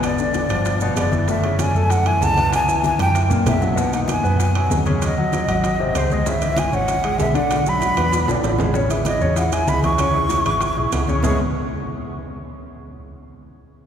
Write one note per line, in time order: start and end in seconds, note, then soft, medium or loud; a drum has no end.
0.00 0.45 G#1 medium
0.00 0.14 B2 medium
0.00 0.14 B3 medium
0.00 high bongo medium
0.00 high conga soft
0.00 high timbale medium
0.00 maracas medium
0.04 0.93 D5 medium
0.18 0.45 D3 medium
0.18 0.45 D4 medium
0.18 high bongo soft
0.18 high conga soft
0.18 maracas medium
0.34 high bongo medium
0.34 high conga medium
0.34 high timbale medium
0.34 low timbale medium
0.34 maracas medium
0.49 0.93 G1 loud
0.49 0.76 F3 medium
0.49 0.76 F4 medium
0.49 high conga soft
0.49 high timbale loud
0.49 maracas soft
0.65 high bongo medium
0.65 high timbale medium
0.65 maracas medium
0.80 1.07 B2 medium
0.80 1.07 B3 medium
0.80 high bongo soft
0.80 high conga soft
0.80 maracas medium
0.96 1.69 F#1 medium
0.96 1.27 D5 medium
0.96 high bongo soft
0.96 low bongo medium
0.96 high conga soft
0.96 high timbale loud
0.96 low timbale medium
0.96 maracas medium
1.12 1.25 E3 medium
1.12 1.25 E4 medium
1.12 high bongo soft
1.12 high conga medium
1.12 maracas soft
1.27 1.40 A2 medium
1.27 1.41 A3 medium
1.27 1.62 E5 medium
1.27 high bongo medium
1.27 high conga soft
1.27 maracas medium
1.43 1.69 C#3 medium
1.43 1.70 C#4 medium
1.43 high bongo soft
1.43 high conga soft
1.43 high timbale medium
1.59 1.92 G#5 loud
1.59 high bongo medium
1.59 high conga loud
1.59 high timbale medium
1.59 low timbale medium
1.59 maracas medium
1.74 2.18 F#2 loud
1.74 2.01 A3 medium
1.74 2.01 A4 medium
1.74 high conga soft
1.74 maracas soft
1.90 2.08 F#5 loud
1.90 high bongo medium
1.90 high conga soft
1.90 high timbale medium
1.90 maracas medium
2.06 2.32 E3 medium
2.06 2.32 E4 medium
2.06 2.24 G#5 medium
2.06 high bongo soft
2.06 high conga soft
2.06 high timbale medium
2.21 2.93 C#2 medium
2.21 2.53 A5 loud
2.21 high bongo soft
2.21 low bongo medium
2.21 high conga medium
2.21 low timbale medium
2.21 maracas medium
2.37 2.62 B2 medium
2.37 2.63 B3 medium
2.37 high bongo soft
2.37 high conga medium
2.37 high timbale medium
2.37 maracas soft
2.52 2.82 G#5 loud
2.52 high bongo medium
2.52 high conga soft
2.52 high timbale medium
2.52 maracas medium
2.68 2.94 E3 medium
2.68 2.94 E4 medium
2.68 high bongo soft
2.68 high conga soft
2.68 maracas medium
2.83 2.99 G#5 loud
2.83 high bongo medium
2.83 high conga loud
2.83 high timbale medium
2.83 low timbale medium
2.83 maracas medium
2.99 3.43 F#2 loud
2.99 3.25 E3 medium
2.99 3.25 E4 medium
2.99 3.29 G5 medium
2.99 high conga loud
2.99 high timbale medium
2.99 maracas soft
3.15 high bongo medium
3.15 high timbale medium
3.15 maracas medium
3.30 3.55 A#2 medium
3.30 3.56 A#3 medium
3.30 high bongo soft
3.30 low conga medium
3.30 maracas medium
3.46 4.18 B1 medium
3.46 3.81 E5 medium
3.46 high bongo soft
3.46 low bongo medium
3.46 low conga loud
3.46 high timbale medium
3.46 low timbale medium
3.46 maracas medium
3.61 3.74 F#3 medium
3.61 3.74 F#4 medium
3.61 high bongo soft
3.61 low conga medium
3.61 maracas soft
3.76 3.89 B2 medium
3.76 3.89 B3 medium
3.76 3.93 F#5 medium
3.76 high bongo medium
3.76 high conga soft
3.76 maracas medium
3.92 4.18 D#3 medium
3.92 4.18 D#4 medium
3.92 4.00 F#5 medium
3.92 high bongo soft
3.92 high conga soft
3.92 high timbale medium
3.92 maracas medium
4.08 4.38 G#5 medium
4.08 high bongo medium
4.08 high conga medium
4.08 high timbale medium
4.08 low timbale medium
4.08 maracas medium
4.24 4.67 F#2 loud
4.24 4.49 B3 medium
4.24 4.49 B4 medium
4.24 high conga soft
4.24 maracas soft
4.39 4.69 G#5 medium
4.39 high bongo medium
4.39 high conga soft
4.39 high timbale medium
4.39 maracas medium
4.55 4.81 F#3 medium
4.55 4.81 F#4 medium
4.55 high bongo soft
4.55 high conga soft
4.55 high timbale medium
4.70 5.43 D#2 medium
4.70 high bongo soft
4.70 low bongo medium
4.70 high conga loud
4.70 low timbale medium
4.70 maracas medium
4.86 5.12 C#3 loud
4.86 5.12 C#4 medium
4.86 high bongo soft
4.86 high conga medium
4.86 high timbale medium
4.86 maracas soft
5.01 5.99 D#5 medium
5.01 high bongo medium
5.01 high conga soft
5.01 high timbale medium
5.01 maracas medium
5.16 5.43 F#3 medium
5.16 5.43 F#4 medium
5.16 high bongo soft
5.16 high conga soft
5.32 high bongo medium
5.32 high conga medium
5.32 high timbale medium
5.32 low timbale medium
5.32 maracas medium
5.48 5.91 G#1 loud
5.48 5.74 F#3 medium
5.48 5.74 F#4 medium
5.48 high conga soft
5.48 high timbale medium
5.48 maracas soft
5.64 high bongo medium
5.64 high conga soft
5.64 high timbale medium
5.64 maracas medium
5.79 6.05 C3 medium
5.79 6.06 C4 medium
5.79 high bongo soft
5.79 high conga soft
5.95 6.67 C#2 medium
5.95 6.15 C5 medium
5.95 high bongo soft
5.95 low bongo medium
5.95 high conga soft
5.95 high timbale loud
5.95 low timbale medium
5.95 maracas medium
6.10 6.24 G#3 medium
6.10 6.24 G#4 medium
6.10 6.29 D#5 medium
6.10 high bongo soft
6.10 high conga medium
6.10 maracas soft
6.25 6.39 C#3 medium
6.25 6.39 C#4 medium
6.25 6.60 E5 medium
6.25 high bongo medium
6.25 high conga soft
6.25 maracas medium
6.41 6.68 E3 medium
6.41 6.68 E4 medium
6.41 high bongo soft
6.41 high conga soft
6.41 high timbale medium
6.41 maracas medium
6.57 6.76 G#5 medium
6.57 high bongo medium
6.57 high conga loud
6.57 high timbale medium
6.57 low timbale medium
6.57 maracas medium
6.72 7.16 G#1 medium
6.72 6.98 C#4 medium
6.72 6.98 C#5 medium
6.72 7.20 F#5 loud
6.72 high conga soft
6.72 maracas soft
6.87 high bongo medium
6.87 high conga soft
6.87 high timbale medium
6.87 maracas medium
7.03 7.29 G#3 medium
7.03 7.30 G#4 medium
7.03 high bongo soft
7.03 high conga soft
7.03 high timbale loud
7.18 7.91 B1 medium
7.18 7.34 E5 medium
7.18 high bongo soft
7.18 low bongo medium
7.18 high conga loud
7.18 low timbale medium
7.18 maracas medium
7.34 7.60 D3 medium
7.34 7.60 D4 medium
7.34 7.70 F#5 loud
7.34 high bongo soft
7.34 high conga medium
7.34 high timbale medium
7.34 maracas soft
7.50 high bongo medium
7.50 high conga soft
7.50 high timbale medium
7.50 maracas medium
7.65 7.92 F#3 medium
7.65 7.92 F#4 medium
7.65 8.29 B5 loud
7.65 high bongo soft
7.65 high conga soft
7.65 maracas medium
7.81 high bongo medium
7.81 high conga medium
7.81 high timbale medium
7.81 low timbale medium
7.81 maracas medium
7.97 8.26 E2 medium
7.97 8.23 B3 medium
7.97 8.23 B4 medium
7.97 high bongo loud
7.97 high conga soft
7.97 high timbale loud
7.97 maracas soft
8.12 high bongo loud
8.12 high timbale medium
8.12 maracas medium
8.28 8.42 B1 medium
8.28 8.53 D3 medium
8.28 8.54 D4 medium
8.28 high bongo loud
8.28 high conga soft
8.28 high timbale medium
8.28 maracas medium
8.43 9.15 A1 medium
8.43 low bongo medium
8.43 high conga soft
8.43 high timbale medium
8.43 maracas medium
8.58 8.72 G#3 medium
8.58 8.72 G#4 medium
8.58 low bongo medium
8.58 high conga medium
8.58 low timbale loud
8.58 maracas soft
8.74 8.87 C#3 medium
8.74 8.88 C#4 medium
8.74 8.88 C#5 medium
8.74 high bongo medium
8.74 high conga soft
8.74 maracas medium
8.89 9.16 E3 medium
8.89 9.16 E4 medium
8.89 9.16 G#4 medium
8.89 high bongo soft
8.89 high conga soft
8.89 high timbale medium
8.89 maracas medium
9.05 9.35 D#5 medium
9.05 high bongo medium
9.05 high conga loud
9.05 high timbale medium
9.05 low timbale medium
9.05 maracas medium
9.21 9.64 E2 medium
9.21 9.34 C#3 medium
9.21 9.34 C#4 medium
9.21 9.34 C#5 medium
9.21 high conga soft
9.21 maracas soft
9.36 9.49 E3 medium
9.36 9.49 E4 medium
9.36 9.49 G#4 medium
9.36 9.54 F#5 medium
9.36 high bongo medium
9.36 high conga soft
9.36 high timbale medium
9.36 maracas medium
9.52 9.78 E3 medium
9.52 9.78 E4 medium
9.52 9.78 G#4 medium
9.52 9.70 G#5 medium
9.52 high bongo soft
9.52 high conga soft
9.52 high timbale loud
9.52 maracas medium
9.67 10.40 C#2 medium
9.67 9.84 B5 loud
9.67 high bongo soft
9.67 low bongo medium
9.67 high conga medium
9.67 low timbale medium
9.67 maracas medium
9.83 9.97 E3 medium
9.83 9.97 E4 medium
9.83 9.97 G#4 medium
9.83 11.04 C#6 medium
9.83 high bongo soft
9.83 high conga medium
9.83 high timbale medium
9.83 maracas soft
9.98 10.12 C#3 medium
9.98 10.12 C#4 medium
9.98 10.12 C#5 medium
9.98 high bongo medium
9.98 high conga soft
9.98 high timbale medium
9.98 maracas medium
10.14 10.40 E3 medium
10.14 10.40 E4 medium
10.14 10.40 G#4 medium
10.14 high bongo soft
10.14 high conga soft
10.29 high bongo medium
10.29 high conga medium
10.29 high timbale medium
10.29 low timbale medium
10.29 maracas medium
10.45 10.75 G#1 medium
10.45 10.71 E3 medium
10.45 10.71 E4 medium
10.45 10.71 G#4 medium
10.45 high conga soft
10.45 high timbale medium
10.45 maracas soft
10.61 high bongo medium
10.61 high conga soft
10.61 high timbale medium
10.61 maracas medium
10.76 10.91 B1 medium
10.76 11.02 E3 medium
10.76 11.03 E4 medium
10.76 11.03 G#4 medium
10.76 high bongo soft
10.76 high conga soft
10.92 11.20 C#2 medium
10.92 high bongo soft
10.92 low bongo medium
10.92 high conga soft
10.92 high timbale medium
10.92 low timbale medium
10.92 maracas medium
11.08 11.21 C#3 medium
11.08 11.21 C#4 medium
11.08 11.21 C#5 medium
11.08 high bongo soft
11.08 high conga medium
11.08 maracas soft
11.23 11.38 C#2 medium
11.23 11.38 C#3 medium
11.23 11.38 G#3 medium
11.23 11.38 B3 medium
11.23 11.38 C#4 medium
11.23 11.38 E4 medium
11.23 11.38 G#4 loud
11.23 11.38 C#6 medium
11.23 low bongo medium
11.23 low conga medium
11.23 low timbale medium
11.23 maracas medium